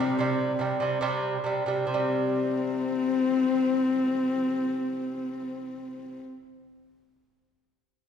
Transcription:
0.00 0.15 C3 medium
0.00 0.16 G3 medium
0.00 0.99 C4 medium
0.19 0.52 C3 medium
0.19 0.52 G3 loud
0.59 0.76 C3 medium
0.59 0.77 G3 loud
0.80 0.97 C3 medium
0.80 0.98 G3 medium
1.01 1.36 C3 loud
1.01 1.37 G3 loud
1.44 1.62 C3 medium
1.44 1.63 G3 medium
1.66 1.84 C3 medium
1.66 1.85 G3 medium
1.87 6.17 C3 medium
1.87 6.20 C4 medium
1.94 6.24 G3 medium

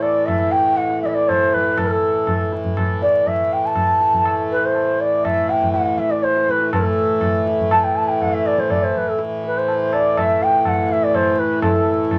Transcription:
0.00 6.72 A2 medium
0.00 6.71 E3 medium
0.00 0.27 D5 loud
0.00 tabla na medium
0.26 0.53 E5 loud
0.26 tabla na medium
0.26 tabla ge medium
0.52 0.78 G5 loud
0.52 tabla te medium
0.77 1.02 F#5 loud
0.77 tabla te medium
0.90 tabla te medium
1.02 1.10 D5 medium
1.02 1.06 E5 medium
1.02 tabla ke medium
1.09 1.16 E5 medium
1.14 1.30 D5 medium
1.14 tabla te medium
1.28 1.55 C5 loud
1.28 tabla na medium
1.28 tabla ge medium
1.54 1.81 B4 medium
1.54 tabla ge medium
1.78 2.53 A4 medium
1.78 tabla na loud
1.78 tabla ge loud
2.27 tabla na medium
2.27 tabla ge medium
2.53 tabla te medium
2.64 tabla ge medium
2.77 tabla na medium
2.77 tabla ge medium
3.02 3.29 D5 loud
3.02 tabla te medium
3.25 3.54 E5 medium
3.25 tabla tin medium
3.25 tabla ge medium
3.53 3.67 G5 medium
3.66 4.39 A5 loud
3.76 tabla na medium
3.76 tabla ge medium
4.01 tabla te medium
4.13 tabla ge medium
4.25 tabla na medium
4.51 4.67 B4 medium
4.65 5.02 C5 medium
4.75 tabla tin medium
5.01 5.26 D5 medium
5.25 5.51 E5 loud
5.25 tabla na medium
5.25 tabla ge medium
5.49 5.72 G5 loud
5.49 tabla te medium
5.62 tabla ge medium
5.73 6.00 F#5 medium
5.73 tabla te medium
5.86 tabla te medium
5.98 6.12 E5 medium
5.98 tabla ke medium
6.11 6.25 D5 medium
6.11 tabla te medium
6.23 6.52 C5 loud
6.23 tabla te medium
6.37 tabla te medium
6.49 6.73 B4 medium
6.49 tabla ke medium
6.60 tabla te medium
6.72 12.19 A2 medium
6.72 12.19 E3 medium
6.72 7.43 A4 medium
6.72 tabla na loud
6.72 tabla ge loud
7.21 tabla na medium
7.21 tabla ge medium
7.47 tabla te medium
7.60 tabla ge medium
7.71 7.81 A5 loud
7.71 tabla na loud
7.71 tabla ge medium
7.81 7.98 G5 loud
7.81 7.85 A5 medium
7.96 8.10 A5 loud
8.08 8.23 G5 loud
8.21 8.35 F#5 loud
8.21 tabla tin medium
8.21 tabla ge medium
8.34 8.48 E5 medium
8.46 8.61 D5 medium
8.46 tabla na medium
8.58 8.72 C5 medium
8.58 tabla ke medium
8.70 8.85 D5 medium
8.70 tabla na medium
8.70 tabla ge medium
8.83 8.99 C5 medium
8.95 9.10 B4 medium
8.95 tabla ge medium
9.09 9.20 A4 medium
9.19 tabla te medium
9.44 9.59 B4 medium
9.44 tabla te medium
9.58 9.95 C5 medium
9.68 tabla tin medium
9.93 10.20 D5 loud
9.93 tabla na medium
10.17 10.45 E5 loud
10.17 tabla na loud
10.17 tabla ge medium
10.42 10.69 G5 loud
10.42 tabla te medium
10.65 10.94 F#5 loud
10.65 tabla na medium
10.65 tabla ge medium
10.90 11.05 E5 loud
10.90 tabla te medium
11.04 11.17 D5 medium
11.15 11.41 C5 loud
11.15 tabla na medium
11.15 tabla ge medium
11.39 11.62 B4 medium
11.39 tabla te medium
11.62 12.19 A4 medium
11.62 tabla na loud
11.62 tabla ge loud
12.11 tabla na medium
12.11 tabla ge medium

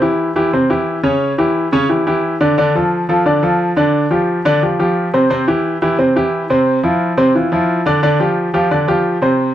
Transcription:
0.02 0.30 E3 medium
0.02 0.30 E4 medium
0.02 0.30 G4 medium
0.36 0.50 E3 medium
0.36 0.50 E4 medium
0.36 0.50 G4 medium
0.53 0.67 C3 medium
0.53 0.67 C4 medium
0.53 0.67 C5 medium
0.70 0.98 E3 medium
0.70 0.98 E4 medium
0.70 0.98 G4 medium
1.03 1.32 C#3 medium
1.03 1.32 C#4 medium
1.03 1.32 C#5 medium
1.38 1.66 E3 medium
1.38 1.66 E4 medium
1.38 1.66 G4 medium
1.72 1.86 C#3 medium
1.72 1.87 C#4 medium
1.72 1.87 C#5 medium
1.89 2.03 E3 medium
1.89 2.03 E4 medium
1.89 2.03 G4 medium
2.07 2.34 E3 medium
2.07 2.35 E4 medium
2.07 2.35 G4 medium
2.41 2.54 D3 medium
2.41 2.55 D4 medium
2.41 2.55 D5 medium
2.58 2.72 D3 medium
2.58 2.72 D4 medium
2.58 2.72 D5 medium
2.75 3.03 F3 medium
2.75 3.03 F4 medium
2.75 3.03 A4 medium
3.09 3.23 F3 medium
3.09 3.23 F4 medium
3.09 3.23 A4 medium
3.26 3.40 D3 medium
3.26 3.40 D4 medium
3.26 3.40 D5 medium
3.43 3.71 F3 medium
3.43 3.71 F4 medium
3.43 3.71 A4 medium
3.76 4.05 D3 medium
3.76 4.05 D4 medium
3.76 4.05 D5 medium
4.10 4.39 F3 medium
4.10 4.39 F4 medium
4.10 4.39 G4 medium
4.45 4.59 D3 medium
4.45 4.59 D4 medium
4.45 4.59 D5 medium
4.62 4.76 F3 medium
4.62 4.76 F4 medium
4.62 4.77 G4 medium
4.79 5.07 F3 medium
4.79 5.07 F4 medium
4.79 5.07 G4 medium
5.14 5.27 C3 medium
5.14 5.27 C4 medium
5.14 5.28 C5 medium
5.30 5.44 C3 medium
5.30 5.44 C4 medium
5.30 5.44 C5 medium
5.48 5.75 E3 medium
5.48 5.76 E4 medium
5.48 5.76 G4 medium
5.82 5.96 E3 medium
5.82 5.96 E4 medium
5.82 5.96 G4 medium
5.98 6.12 C3 medium
5.98 6.13 C4 medium
5.98 6.13 C5 medium
6.16 6.44 E3 medium
6.16 6.44 E4 medium
6.16 6.44 G4 medium
6.50 6.78 C3 medium
6.50 6.78 C4 medium
6.50 6.78 C5 medium
6.83 7.11 F3 medium
6.83 7.12 E4 medium
6.83 7.12 F4 medium
7.17 7.31 C3 medium
7.17 7.32 C4 medium
7.17 7.32 C5 medium
7.35 7.49 E3 medium
7.35 7.49 E4 medium
7.35 7.49 F4 medium
7.52 7.80 F3 medium
7.52 7.80 E4 medium
7.52 7.80 F4 medium
7.86 8.00 D3 medium
7.86 8.00 D4 medium
7.86 8.00 D5 medium
8.03 8.17 D3 medium
8.03 8.17 D4 medium
8.03 8.17 D5 medium
8.20 8.48 F3 medium
8.20 8.48 F4 medium
8.20 8.48 G4 medium
8.54 8.68 F3 medium
8.54 8.68 F4 medium
8.54 8.68 G4 medium
8.71 8.85 D3 medium
8.71 8.85 D4 medium
8.71 8.85 D5 medium
8.88 9.16 F3 medium
8.88 9.16 F4 medium
8.88 9.16 G4 medium
9.22 9.50 C3 medium
9.22 9.50 C4 medium
9.22 9.50 C5 medium

